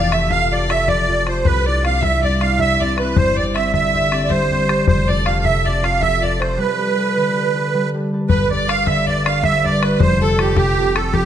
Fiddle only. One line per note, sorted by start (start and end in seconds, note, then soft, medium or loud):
0.00 0.15 F5 loud
0.13 0.30 E5 medium
0.31 0.54 F5 medium
0.53 0.72 D5 medium
0.71 0.90 E5 medium
0.89 1.27 D5 medium
1.27 1.44 C5 medium
1.45 1.68 B4 medium
1.66 1.83 D5 medium
1.84 2.02 F5 medium
2.01 2.22 E5 medium
2.22 2.42 D5 medium
2.41 2.59 F5 medium
2.60 2.82 E5 medium
2.80 2.97 D5 medium
2.98 3.18 B4 medium
3.16 3.38 C5 medium
3.36 3.56 D5 medium
3.54 3.72 E5 medium
3.73 4.31 E5 medium
4.29 4.87 C5 medium
4.87 5.09 C5 medium
5.08 5.27 D5 medium
5.26 5.46 F5 medium
5.44 5.67 E5 medium
5.66 5.85 D5 medium
5.83 6.03 F5 medium
6.01 6.24 E5 medium
6.22 6.41 D5 medium
6.40 6.58 C5 medium
6.58 7.89 B4 medium
8.29 8.49 B4 medium
8.51 8.70 D5 medium
8.69 8.88 F5 medium
8.86 9.03 E5 medium
9.03 9.08 E5 medium
9.07 9.25 D5 medium
9.26 9.42 F5 medium
9.43 9.59 E5 medium
9.59 9.66 E5 medium
9.64 9.84 D5 loud
9.83 10.01 B4 medium
10.00 10.20 C5 medium
10.21 10.58 A4 medium
10.56 10.98 G4 medium
10.96 11.16 A4 medium
11.15 11.25 G4 medium